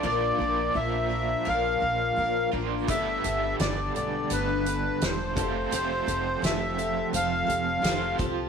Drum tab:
HH |--------|xxxxxxxx|xxxxxxxx|
SD |--------|--o---o-|--o---o-|
BD |--------|o------o|-------o|